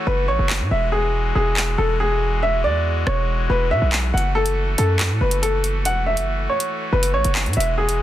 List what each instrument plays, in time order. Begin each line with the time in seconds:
Already playing: pipe organ E3 A3 F#4
0.07 808-style bass F#1, upright piano B4
0.28 808-style bass A1, upright piano C#5
0.39 808-style bass F#1
0.50 clap
0.60 808-style bass A2
0.71 808-style bass E1, pipe organ G#3 F#4, upright piano E5
0.92 upright piano G#4
1.35 808-style bass E1, upright piano G#4
1.57 clap
1.78 808-style bass E1, upright piano A4
2.00 upright piano G#4
2.43 upright piano E5
2.64 808-style bass E2, upright piano D5
3.07 808-style bass E1, upright piano C#5, cross-stick
3.50 808-style bass E1, upright piano B4
3.71 808-style bass B2, upright piano E5
3.82 808-style bass B1
3.93 clap
4.14 808-style bass F#1, pipe organ A3, upright piano F#5, closed hi-hat
4.35 upright piano A4
4.46 closed hi-hat
4.78 808-style bass F#2, upright piano A4, closed hi-hat
4.99 clap, closed hi-hat
5.10 808-style bass A2
5.21 808-style bass F#1, upright piano B4
5.31 closed hi-hat
5.42 upright piano A4, closed hi-hat
5.64 closed hi-hat
5.85 808-style bass E1, upright piano F#5, closed hi-hat
6.06 upright piano E5
6.17 808-style bass F#1, closed hi-hat
6.49 upright piano C#5
6.60 closed hi-hat
6.93 808-style bass F#1, upright piano B4
7.03 closed hi-hat
7.14 808-style bass A1, upright piano C#5
7.24 808-style bass F#1, closed hi-hat
7.35 clap
7.46 808-style bass A2, closed hi-hat
7.53 808-style bass E1, pipe organ E3 G#3, upright piano E5, closed hi-hat
7.60 closed hi-hat
7.78 upright piano G#4
7.89 closed hi-hat